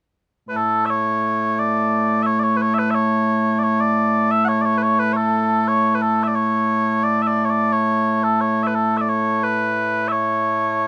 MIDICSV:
0, 0, Header, 1, 2, 480
1, 0, Start_track
1, 0, Key_signature, 3, "major"
1, 0, Tempo, 681818
1, 634, Time_signature, 4, 2, 24, 8
1, 7656, End_track
2, 0, Start_track
2, 0, Title_t, "Bagpipes"
2, 0, Program_c, 0, 109
2, 345, Note_on_c, 0, 45, 89
2, 345, Note_on_c, 0, 57, 89
2, 345, Note_on_c, 0, 71, 62
2, 396, Note_off_c, 0, 71, 0
2, 396, Note_on_c, 0, 69, 82
2, 603, Note_off_c, 0, 69, 0
2, 603, Note_on_c, 0, 76, 92
2, 634, Note_off_c, 0, 76, 0
2, 634, Note_on_c, 0, 73, 92
2, 1120, Note_off_c, 0, 73, 0
2, 1120, Note_on_c, 0, 74, 89
2, 1569, Note_off_c, 0, 74, 0
2, 1569, Note_on_c, 0, 76, 95
2, 1593, Note_off_c, 0, 76, 0
2, 1593, Note_on_c, 0, 73, 95
2, 1685, Note_off_c, 0, 73, 0
2, 1685, Note_on_c, 0, 74, 70
2, 1713, Note_off_c, 0, 74, 0
2, 1713, Note_on_c, 0, 73, 89
2, 1807, Note_off_c, 0, 73, 0
2, 1807, Note_on_c, 0, 71, 68
2, 1842, Note_off_c, 0, 71, 0
2, 1842, Note_on_c, 0, 73, 103
2, 1931, Note_off_c, 0, 73, 0
2, 1931, Note_on_c, 0, 76, 84
2, 1962, Note_off_c, 0, 76, 0
2, 1962, Note_on_c, 0, 71, 84
2, 2046, Note_on_c, 0, 76, 94
2, 2047, Note_off_c, 0, 71, 0
2, 2075, Note_off_c, 0, 76, 0
2, 2075, Note_on_c, 0, 73, 94
2, 2526, Note_off_c, 0, 73, 0
2, 2526, Note_on_c, 0, 74, 76
2, 2559, Note_off_c, 0, 74, 0
2, 2559, Note_on_c, 0, 73, 95
2, 2678, Note_off_c, 0, 73, 0
2, 2678, Note_on_c, 0, 74, 96
2, 3036, Note_off_c, 0, 74, 0
2, 3036, Note_on_c, 0, 76, 100
2, 3132, Note_off_c, 0, 76, 0
2, 3132, Note_on_c, 0, 78, 102
2, 3157, Note_off_c, 0, 78, 0
2, 3157, Note_on_c, 0, 73, 102
2, 3248, Note_off_c, 0, 73, 0
2, 3248, Note_on_c, 0, 74, 75
2, 3274, Note_off_c, 0, 74, 0
2, 3274, Note_on_c, 0, 73, 104
2, 3363, Note_off_c, 0, 73, 0
2, 3363, Note_on_c, 0, 71, 68
2, 3398, Note_off_c, 0, 71, 0
2, 3398, Note_on_c, 0, 73, 93
2, 3515, Note_off_c, 0, 73, 0
2, 3515, Note_on_c, 0, 71, 100
2, 3612, Note_off_c, 0, 71, 0
2, 3612, Note_on_c, 0, 73, 91
2, 3636, Note_off_c, 0, 73, 0
2, 3636, Note_on_c, 0, 69, 91
2, 3998, Note_off_c, 0, 69, 0
2, 3998, Note_on_c, 0, 73, 97
2, 4188, Note_off_c, 0, 73, 0
2, 4188, Note_on_c, 0, 71, 61
2, 4236, Note_off_c, 0, 71, 0
2, 4236, Note_on_c, 0, 69, 80
2, 4389, Note_off_c, 0, 69, 0
2, 4389, Note_on_c, 0, 76, 70
2, 4419, Note_off_c, 0, 76, 0
2, 4419, Note_on_c, 0, 74, 70
2, 4471, Note_off_c, 0, 74, 0
2, 4471, Note_on_c, 0, 73, 96
2, 4953, Note_off_c, 0, 73, 0
2, 4953, Note_on_c, 0, 74, 97
2, 5085, Note_off_c, 0, 74, 0
2, 5085, Note_on_c, 0, 76, 72
2, 5120, Note_off_c, 0, 76, 0
2, 5120, Note_on_c, 0, 74, 99
2, 5245, Note_off_c, 0, 74, 0
2, 5245, Note_on_c, 0, 73, 68
2, 5278, Note_off_c, 0, 73, 0
2, 5278, Note_on_c, 0, 74, 100
2, 5438, Note_off_c, 0, 74, 0
2, 5438, Note_on_c, 0, 73, 96
2, 5798, Note_off_c, 0, 73, 0
2, 5798, Note_on_c, 0, 69, 76
2, 5919, Note_off_c, 0, 69, 0
2, 5919, Note_on_c, 0, 73, 92
2, 6077, Note_off_c, 0, 73, 0
2, 6077, Note_on_c, 0, 76, 62
2, 6104, Note_off_c, 0, 76, 0
2, 6104, Note_on_c, 0, 71, 62
2, 6158, Note_off_c, 0, 71, 0
2, 6158, Note_on_c, 0, 69, 77
2, 6317, Note_off_c, 0, 69, 0
2, 6317, Note_on_c, 0, 76, 68
2, 6345, Note_off_c, 0, 76, 0
2, 6345, Note_on_c, 0, 74, 68
2, 6399, Note_off_c, 0, 74, 0
2, 6399, Note_on_c, 0, 73, 93
2, 6641, Note_off_c, 0, 73, 0
2, 6641, Note_on_c, 0, 71, 85
2, 7099, Note_off_c, 0, 71, 0
2, 7099, Note_on_c, 0, 76, 85
2, 7125, Note_off_c, 0, 76, 0
2, 7125, Note_on_c, 0, 73, 85
2, 7656, Note_off_c, 0, 45, 0
2, 7656, Note_off_c, 0, 57, 0
2, 7656, Note_off_c, 0, 73, 0
2, 7656, End_track
0, 0, End_of_file